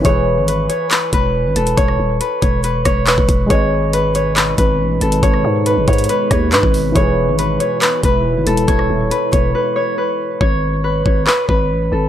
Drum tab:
HH |x-------x---x---x---x-------x-x-|x-------x---x---x---x---x---x---|x-------x---x---x---x-------x-x-|x-------x---xxxxx---x---x---o---|
CP |----------------x---------------|------------------------x-------|----------------x---------------|------------------------x-------|
SD |--------------------------------|--r-----------------r-----------|--------------------------------|--r-----------------r-----------|
BD |o-------------------o-----------|o-----------o-------o-----o-o---|o-------------------o-----------|o-----------o-------o-----o-----|

HH |x-------x---x---x---x-------x-x-|x-------x---x-------------------|--------------------------------|
CP |----------------x---------------|--------------------------------|----------------x---------------|
SD |--------------------------------|--r-----------------------------|--------------------------------|
BD |o-------------------o-----------|o-----------o-------------------|o-----------o-------o-----------|